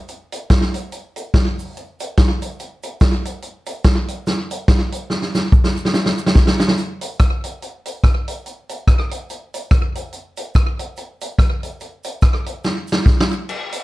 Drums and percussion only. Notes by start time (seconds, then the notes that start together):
0.08 closed hi-hat, cabasa
0.32 closed hi-hat, cabasa
0.50 kick, snare, closed hi-hat, cabasa
0.62 snare
0.74 closed hi-hat, cabasa
0.92 closed hi-hat, cabasa
1.16 closed hi-hat, cabasa
1.34 kick, snare, closed hi-hat, cabasa
1.59 open hi-hat, cabasa
1.77 closed hi-hat, cabasa
2.00 closed hi-hat, cabasa
2.17 kick, snare, closed hi-hat, cabasa
2.42 closed hi-hat, cabasa
2.60 closed hi-hat, cabasa
2.83 closed hi-hat, cabasa
3.00 kick, snare, closed hi-hat, cabasa
3.25 closed hi-hat, cabasa
3.42 closed hi-hat, cabasa
3.66 closed hi-hat, cabasa
3.84 kick, snare, closed hi-hat, cabasa
4.08 closed hi-hat, cabasa
4.27 snare, closed hi-hat, cabasa
4.51 closed hi-hat, cabasa
4.68 kick, snare, closed hi-hat, cabasa
4.92 closed hi-hat, cabasa
5.10 snare, cabasa
5.22 snare
5.35 snare, cabasa
5.52 kick, cabasa
5.64 snare
5.77 cabasa
5.85 snare
5.94 snare, cabasa
6.06 snare
6.18 cabasa
6.26 snare
6.35 kick, snare, cabasa
6.47 snare
6.60 snare, cabasa
6.68 snare
6.77 closed hi-hat, cabasa
7.01 closed hi-hat, cabasa
7.19 kick, cross-stick, closed hi-hat, cabasa
7.44 closed hi-hat, cabasa
7.62 closed hi-hat, cabasa
7.85 closed hi-hat, cabasa
8.04 kick, cross-stick, closed hi-hat, cabasa
8.28 closed hi-hat, cabasa
8.46 closed hi-hat, cabasa
8.69 closed hi-hat, cabasa
8.87 kick, cross-stick, closed hi-hat, cabasa
8.99 cross-stick
9.11 closed hi-hat, cabasa
9.30 closed hi-hat, cabasa
9.54 closed hi-hat, cabasa
9.71 kick, cross-stick, closed hi-hat, cabasa
9.95 closed hi-hat, cabasa
10.12 closed hi-hat, cabasa
10.37 closed hi-hat, cabasa
10.55 kick, cross-stick, closed hi-hat, cabasa
10.79 closed hi-hat, cabasa
10.97 closed hi-hat, cabasa
11.21 closed hi-hat, cabasa
11.39 kick, cross-stick, closed hi-hat, cabasa
11.63 closed hi-hat, cabasa
11.80 closed hi-hat, cabasa
12.04 closed hi-hat, cabasa
12.22 kick, cross-stick, closed hi-hat, cabasa
12.34 cross-stick
12.46 closed hi-hat, cabasa
12.64 snare, cabasa
12.87 cabasa
12.92 snare
13.06 kick, snare, cabasa
13.21 snare
13.31 cabasa
13.49 crash, cabasa
13.72 closed hi-hat, cabasa